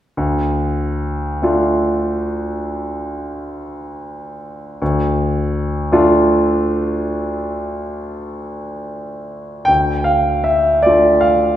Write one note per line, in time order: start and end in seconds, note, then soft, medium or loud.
0.17 1.38 D2 soft
1.42 4.77 A3 soft
1.42 4.77 D4 soft
1.42 4.77 F4 soft
4.82 5.89 D2 medium
5.92 9.65 A3 soft
5.92 9.65 D4 soft
5.92 9.65 F4 medium
9.65 10.82 D2 soft
9.65 10.07 G5 medium
10.04 10.46 F5 medium
10.44 10.84 E5 medium
10.82 11.56 A3 soft
10.82 11.56 D4 soft
10.82 11.56 F4 soft
10.82 11.23 D5 medium
11.21 11.56 F5 medium